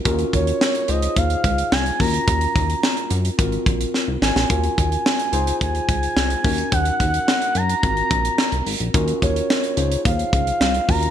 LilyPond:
<<
  \new Staff \with { instrumentName = "Analog synth lead" } { \time 4/4 \key ees \dorian \tempo 4 = 108 r8 des''4 ees''8 f''4 aes''8 bes''8~ | bes''4. r2 aes''8 | aes''2 aes''2 | ges''4. bes''2 r8 |
r8 des''4. f''4. bes''8 | }
  \new Staff \with { instrumentName = "Tine electric piano" } { \time 4/4 \key ees \dorian <des' f' ges' bes'>4. <ees' f' aes' c''>2 <des' f' ges' bes'>8~ | <des' f' ges' bes'>2 <c' f' ges' bes'>2 | <des' f' ges' bes'>4. <ees' f' aes' c''>2 <des' ees' ges' bes'>8~ | <des' ees' ges' bes'>2 <c' f' ges' bes'>2 |
<des' f' ges' bes'>4. <ees' f' aes' c''>2 <des' f' ges' bes'>8 | }
  \new Staff \with { instrumentName = "Analog synth bass" } { \clef bass \time 4/4 \key ees \dorian ees,8 ees,8 r8 des,8 ees,8 des,8 c,8 ees,8 | ees,8 ees,8 r8 ges,8 aes,,8 bes,,8 r16 c,16 aes,,16 bes,,16 | ees,8 ees,8 r8 des,8 ees,8 des,8 c,8 ees,8 | ees,8 ees,8 r8 ges,8 aes,,8 bes,,8 r16 c,16 aes,,16 bes,,16 |
ees,8 ees,8 r8 des,8 ees,8 des,8 c,8 ees,8 | }
  \new DrumStaff \with { instrumentName = "Drums" } \drummode { \time 4/4 <hh bd>16 hh16 <hh bd>16 hh16 sn16 hh16 hh16 hh16 <hh bd>16 hh16 <hh bd>16 hh16 sn16 hh16 <hho bd>16 hh16 | <hh bd>16 hh16 <hh bd>16 hh16 sn16 hh16 hh16 hh16 <hh bd>16 hh16 <hh bd>16 hh16 sn8 sn16 sn16 | <hh bd>16 hh16 <hh bd>16 hh16 sn16 hh16 hh16 hh16 <hh bd>16 hh16 <hh bd>16 hh16 sn16 hh16 <hho bd>16 hh16 | <hh bd>16 hh16 <hh bd>16 hh16 sn16 hh16 hh16 hh16 <hh bd>16 hh16 <hh bd>16 hh16 sn16 hh16 hho16 hh16 |
<hh bd>16 hh16 <hh bd>16 hh16 sn16 hh16 hh16 hh16 <hh bd>16 hh16 <hh bd>16 hh16 sn16 hh16 <hho bd>16 hh16 | }
>>